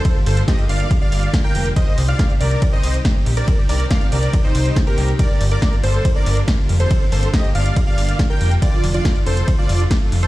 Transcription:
<<
  \new Staff \with { instrumentName = "Digital synth lead" } { \time 4/4 \key g \minor \tempo 4 = 140 c''16 r16 c''8 ees''8 f''8 r16 f''8. r16 g''8 r16 | ees''8 r16 f''8 r16 d''8 r16 ees''8 r4 d''16~ | d''16 r16 d''8 f''8 d''8 r16 c''8. r16 bes'8 r16 | d''8 r16 d''8 r16 c''8 r16 d''8 r4 c''16~ |
c''16 r16 c''8 ees''8 f''8 r16 f''8. r16 g''8 r16 | d''8 r16 d''8 r16 c''8 r16 d''8 r4 c''16 | }
  \new Staff \with { instrumentName = "Supersaw synth" } { \time 4/4 \key g \minor <a' c''>16 r16 <a' c''>8 <g' ees''>8 <d'' f''>8 r16 <d'' f''>8. r16 <bes' g''>8 r16 | <c'' ees''>8 r16 <d'' f''>8 r16 <bes' d''>8 r16 <c'' ees''>8 r4 <bes' d''>16~ | <bes' d''>16 r16 <bes' d''>8 <d'' f''>8 <bes' d''>8 r16 <ees' c''>8. r16 <g' bes'>8 r16 | <bes' d''>8 r16 <bes' d''>8 r16 <a' c''>8 r16 <bes' d''>8 r4 <a' c''>16~ |
<a' c''>16 r16 <a' c''>8 <g' ees''>8 <d'' f''>8 r16 <d'' f''>8. r16 <bes' g''>8 r16 | <f' d''>8 r16 <f' d''>8 r16 <a' c''>8 r16 <f' d''>8 r4 <a' c''>16 | }
  \new Staff \with { instrumentName = "Analog synth pad" } { \clef bass \time 4/4 \key g \minor <d g bes f'>8 <d g bes f'>8 <d g bes f'>16 <d g bes f'>8 <d g bes f'>16 <d g bes f'>8 <d g bes f'>8 <d g bes f'>16 <d g bes f'>8 <d g bes f'>16 | <ees g c' g'>8 <ees g c' g'>8 <ees g c' g'>16 <ees g c' g'>8 <ees g c' g'>16 <ees g c' g'>8 <ees g c' g'>8 <ees g c' g'>16 <ees g c' g'>8 <ees g c' g'>16 | <ees g c' g'>8 <ees g c' g'>8 <ees g c' g'>16 <ees g c' g'>8 <ees g c' g'>16 <ees g c' g'>8 <ees g c' g'>8 <ees g c' g'>16 <ees g c' g'>8 <ees g c' g'>16 | <d g bes f'>8 <d g bes f'>8 <d g bes f'>16 <d g bes f'>8 <d g bes f'>16 <d g bes f'>8 <d g bes f'>8 <d g bes f'>16 <d g bes f'>8 <d g bes f'>16 |
<d g bes f'>8 <d g bes f'>8 <d g bes f'>16 <d g bes f'>8 <d g bes f'>16 <d g bes f'>8 <d g bes f'>8 <d g bes f'>16 <d g bes f'>8 <d g bes f'>16 | <d f a f'>8 <d f a f'>8 <d f a f'>16 <d f a f'>8 <d f a f'>16 <d f a f'>8 <d f a f'>8 <d f a f'>16 <d f a f'>8 <d f a f'>16 | }
  \new Staff \with { instrumentName = "Analog synth bass" } { \clef bass \time 4/4 \key g \minor r8 g,,8 r8 g,,8 r8 g,,8 r8 f,,8 | r8 c,8 r8 c,8 r8 c,8 r8 bes,,8 | r8 c,8 r8 c,8 r8 c,8 r8 c,8 | r8 g,,8 r8 g,,8 r8 g,,8 r8 f,,8 |
r8 g,,8 r8 g,,8 r8 g,,8 r8 f,,8 | r8 f,,8 r8 f,,8 r8 f,,8 r8 f,,8 | }
  \new DrumStaff \with { instrumentName = "Drums" } \drummode { \time 4/4 <hh bd cymr>8 hho16 hh16 <hh bd cymr sn>16 hh16 hho16 hh16 <hh bd cymr>8 hho16 hh16 <hh bd cymr sn>8 hho16 hh16 | <hh bd cymr>8 hho16 hh16 <hh bd cymr sn>16 hh16 hho16 hh16 <hh bd cymr>8 hho16 hh16 <hh bd cymr sn>8 hho16 hh16 | <hh bd cymr>8 hho16 hh16 <hh bd cymr sn>16 hh16 hho16 hh16 <hh bd cymr>8 hho16 hh16 <hh bd cymr sn>16 hh16 hho16 hh16 | <hh bd cymr>8 hho16 hh16 <hh bd cymr sn>16 hh16 hho16 hh16 <hh bd cymr>8 hho16 hh16 <hh bd cymr sn>8 hho16 hh16 |
<hh bd cymr>8 hho16 hh16 <hh bd cymr sn>16 hh16 hho16 hh16 <hh bd cymr>8 hho16 hh16 <hh bd cymr sn>8 hho16 hh16 | <hh bd cymr>8 hho16 hh16 <hh bd cymr sn>16 hh16 hho16 hh16 <hh bd cymr>8 hho16 hh16 <hh bd cymr sn>8 hho16 hh16 | }
>>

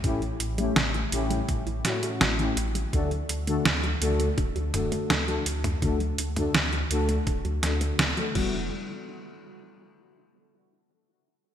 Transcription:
<<
  \new Staff \with { instrumentName = "Analog polysynth" } { \time 4/4 \key d \major \tempo 4 = 83 <a, a cis' e' g'>16 r8 <a, a cis' e' g'>16 r8 <a, a cis' e' g'>8 r8 <a, a cis' e' fis'>8. <a, a cis' e' g'>16 r8 | <d a d' fis' a'>16 r8 <d a d' fis' a'>16 r8 <d a d' fis' a'>8 r8 <d a d' fis' a'>8. <d a d' fis' a'>16 r8 | <d a d' fis' a'>16 r8 <d a d' fis' a'>16 r8 <d a d' fis' a'>8 r8 <d a d' fis' a'>8. <d a d' fis' a'>16 <g b e' fis'>8 | r1 | }
  \new Staff \with { instrumentName = "Synth arpeggio sound" } { \clef bass \time 4/4 \key d \major cis16 e16 r16 g16 cis16 e16 r16 g16 cis16 e16 r16 g16 cis16 e16 r16 g16 | d16 fis16 r16 a16 d16 fis16 r16 a16 d16 fis16 r16 a16 d16 fis16 r16 a16 | d16 fis16 r16 a16 d16 fis16 r16 a16 d16 fis16 r16 a16 d16 fis16 e8 | r1 | }
  \new Staff \with { instrumentName = "Detuned saw bass" } { \clef bass \time 4/4 \key d \major a,,8 a,,8 a,,8 a,,8 a,16 a,,16 a,16 r16 a,,8 a,,8 | d,8 d,8 d,8 d,8 d,,16 d,16 d,,16 r16 d,8 d,8 | d,8 d,8 d,8 d,8 d,,16 d,16 d,8 d,16 r16 e,,8 | r1 | }
  \new DrumStaff \with { instrumentName = "Drums" } \drummode { \time 4/4 <hh bd>16 hh16 hh16 hh16 <hh sn>16 hh16 hh16 hh16 <hh bd>16 hh16 <hh sn>16 hh16 <hh sn>16 hh16 hh16 hh16 | <hh bd>16 hh16 hh16 hh16 <hh sn>16 hh16 hh16 hh16 <hh bd>16 hh16 <hh toml>16 hh16 <hh sn>16 hh16 hh16 <hh toml>16 | <hh bd>16 hh16 hh16 <hh toml>16 <hh sn>16 hh16 hh16 hh16 <hh bd>16 hh16 <hh sn>16 hh16 <hh sn>16 hh16 <cymc bd>8 | r4 r4 r4 r4 | }
>>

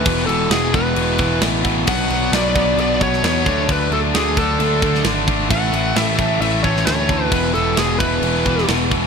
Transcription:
<<
  \new Staff \with { instrumentName = "Lead electric guitar" } { \time 4/4 \key e \mixolydian \tempo 4 = 132 b'8 a'8 gis'8 b'4. r4 | fis''4 d''4 d''8 cis''8 cis''4 | b'8 a'8 gis'8 a'4. r4 | fis''4 e''4 e''8 cis''8 cis''4 |
b'8 a'8 gis'8 b'4. r4 | }
  \new Staff \with { instrumentName = "Overdriven electric guitar" } { \time 4/4 \key e \mixolydian <e gis b e'>4. <e gis b e'>2~ <e gis b e'>8 | <b, fis b d'>4. <b, fis b d'>2 <d fis a d'>8~ | <d fis a d'>4 <d fis a d'>2~ <d fis a d'>8 r8 | <a, e a cis' e'>4. <a, e a cis' e'>2~ <a, e a cis' e'>8 |
<e gis b e'>4. <e gis b e'>2~ <e gis b e'>8 | }
  \new Staff \with { instrumentName = "Distorted electric guitar" } { \clef bass \time 4/4 \key e \mixolydian <e, b, e>8 <e, b, e>8 <e, b, e>8 <e, b, e>8 <e, b, e>8 <e, b, e>8 <e, b, e>8 <e, b, e>8 | <b, fis b>8 <b, fis b>8 <b, fis b>8 <b, fis b>8 <b, fis b>8 <b, fis b>8 <b, fis b>8 <d a d'>8 | <d a d'>8 <d a d'>8 <d a d'>8 <d a d'>8 <d a d'>8 <d a d'>8 <d a d'>8 <d a d'>8 | <a, e a>8 <a, e a>8 <a, e a>8 <a, e a>8 <a, e a>8 <a, e a>8 <a, e a>8 <a, e a>8 |
<e, b, e>8 <e, b, e>8 <e, b, e>8 <e, b, e>8 <e, b, e>8 <e, b, e>8 <e, b, e>8 <e, b, e>8 | }
  \new Staff \with { instrumentName = "Distorted electric guitar" } { \clef bass \time 4/4 \key e \mixolydian <e, b, e>8 <e, b, e>8 <e, b, e>8 <e, b, e>8 <e, b, e>8 <e, b, e>8 <e, b, e>8 <e, b, e>8 | <b, fis b>8 <b, fis b>8 <b, fis b>8 <b, fis b>8 <b, fis b>8 <b, fis b>8 <b, fis b>8 <d a d'>8 | <d a d'>8 <d a d'>8 <d a d'>8 <d a d'>8 <d a d'>8 <d a d'>8 <d a d'>8 <d a d'>8 | <a, e a>8 <a, e a>8 <a, e a>8 <a, e a>8 <a, e a>8 <a, e a>8 <a, e a>8 <a, e a>8 |
<e, b, e>8 <e, b, e>8 <e, b, e>8 <e, b, e>8 <e, b, e>8 <e, b, e>8 <e, b, e>8 <e, b, e>8 | }
  \new Staff \with { instrumentName = "Picked electric bass" } { \clef bass \time 4/4 \key e \mixolydian e,,8 e,,8 e,,4 e,,4 a,,4 | b,,8 b,,8 b,,4 b,,4 e,8 d,8 | d,8 d,8 d,4 d,4 gis,,4 | a,,8 a,,8 a,,4 a,,4 d,4 |
e,,8 e,,8 e,,4 e,,4 e,,4 | }
  \new DrumStaff \with { instrumentName = "Drums" } \drummode { \time 4/4 <cymc bd>8 cymc8 <cymc sn>8 <cymc bd>8 cymc8 <cymc bd>8 <cymc sn>8 <cymc bd>8 | <cymc bd>8 cymc8 <cymc sn>8 <cymc bd>8 cymc8 <cymc bd>16 sn16 <cymc sn>8 <cymc bd>8 | <cymc bd>8 cymc8 <cymc sn>8 <cymc bd>8 cymc8 <cymc bd>16 sn16 <cymc sn>8 <cymc bd>8 | <cymc bd>8 cymc8 <cymc sn>8 <cymc bd>8 cymc8 <cymc bd>16 sn16 <cymc sn>8 <cymc bd>8 |
<cymc bd>8 cymc8 <cymc sn>8 <cymc bd>8 cymc8 <cymc bd>16 sn16 <cymc sn>8 <cymc bd>8 | }
>>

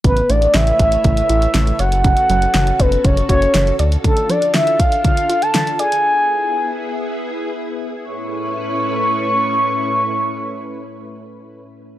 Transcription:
<<
  \new Staff \with { instrumentName = "Soft synth lead" } { \time 4/4 \key a \major \tempo 4 = 120 b'8 d''8 e''8 e''2 fis''8~ | fis''4. b'8 cis''8 cis''4 r8 | a'8 d''8 e''8 f''8 f''8. a''8. gis''8~ | gis''2. r4 |
cis'''1~ | cis'''1 | }
  \new Staff \with { instrumentName = "String machine" } { \time 4/4 \key a \major << { <a b' cis'' e''>2.~ <a b' cis'' e''>8 <cis' fis'>8~ | <cis' fis'>2.~ <cis' fis'>8 <d' f'>8~ | <d' f'>1 | <b e' gis'>1 |
<a, a cis' e' b'>1~ | <a, a cis' e' b'>1 | } \\ { a'1~ | a'1~ | a'1 | r1 |
r1 | r1 | } >> }
  \new Staff \with { instrumentName = "Synth arpeggio sound" } { \clef bass \time 4/4 \key a \major cis8 a8 cis8 r8 cis8 e'8 cis8 cis''8 | cis8 fis8 cis8 r8 cis8 fis'8 cis8 d''8 | d8 f8 d8 r8 d8 f'8 d8 d''8 | r1 |
r1 | r1 | }
  \new Staff \with { instrumentName = "Analog synth bass" } { \clef bass \time 4/4 \key a \major a,,8 a,,8 a,,8 a,,8 a,,8 a,,8 a,,8 fis,,8~ | fis,,8 fis,,8 fis,,8 fis,,8 fis,,8 fis,,8 fis,,8 d,8 | r1 | r1 |
r1 | r1 | }
  \new DrumStaff \with { instrumentName = "Drums" } \drummode { \time 4/4 <hh bd>16 hh16 hh16 hh16 <hh sn>16 hh16 <hh bd>16 hh16 <hh bd>16 hh16 hh16 hh16 <hh sn>16 hh16 hh16 hh16 | <hh bd>16 hh16 hh16 hh16 <hh sn>16 hh16 <hh bd>16 hh16 <hh bd>16 hh16 <hh bd>16 hh16 <hh sn>16 hh16 hh16 hh16 | <hh bd>16 hh16 hh16 hh16 <hh sn>16 hh16 <hh bd>16 hh16 <hh bd>16 hh16 hh16 hh16 <hh sn>16 hh16 hh16 hh16 | r4 r4 r4 r4 |
r4 r4 r4 r4 | r4 r4 r4 r4 | }
>>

